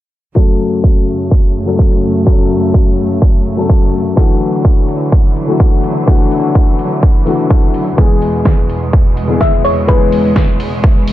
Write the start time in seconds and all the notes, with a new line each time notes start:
0.35 F#2 C#3 F#3 A3 C#4 A4, kick
0.60 open hi-hat
0.84 kick
1.08 open hi-hat
1.31 kick
1.55 open hi-hat
1.66 F#3 A3 C#4 A4
1.79 kick
2.03 open hi-hat
2.25 F#3 A3 C#4 A4, kick
2.50 open hi-hat
2.74 kick
2.98 open hi-hat
3.22 kick
3.46 open hi-hat
3.56 F#3 A3 C#4 A4
3.70 kick
3.93 open hi-hat
4.16 D3 E3 F#3 A3 D4 F#4, kick
4.41 open hi-hat
4.65 kick
4.89 open hi-hat
5.12 kick
5.36 open hi-hat
5.47 E3 A3 D4 F#4
5.60 kick
5.84 open hi-hat
6.06 E3 A3 D4 F#4, kick
6.31 open hi-hat
6.55 kick
6.79 open hi-hat
7.03 kick
7.25 E3 A3 D4 F#4, open hi-hat
7.50 kick
7.74 open hi-hat
7.97 E2 B2 E3 G#3 B3 G#4, kick
8.22 open hi-hat
8.45 kick, snare
8.70 open hi-hat
8.93 kick
9.17 open hi-hat
9.28 E3 G#3 B3 G#4
9.41 E5, kick, snare
9.65 C#5, open hi-hat
9.87 E3 G#3 B3 G#4 B4, kick
10.12 open hi-hat
10.36 kick, snare
10.60 open hi-hat
10.84 kick
11.08 open hi-hat